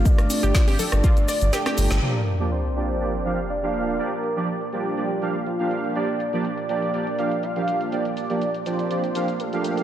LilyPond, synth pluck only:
\new Staff \with { instrumentName = "Synth pluck" } { \time 4/4 \key g \minor \tempo 4 = 122 r8. g'16 f'16 g'16 a'16 r16 f'16 r16 d''16 r16 g'16 g'16 r8 | r1 | r1 | r1 |
r1 | }